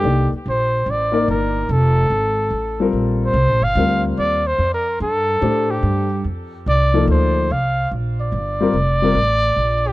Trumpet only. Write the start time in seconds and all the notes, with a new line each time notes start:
Already playing: G4
0.49 C5
0.90 D5
1.31 A#4
1.72 A4
3.24 C5
3.64 F5
4.19 D5
4.47 C5
4.74 A#4
5.02 A4
5.71 G4
6.69 D5
7.11 C5
7.52 F5
8.21 D5
9.88 G4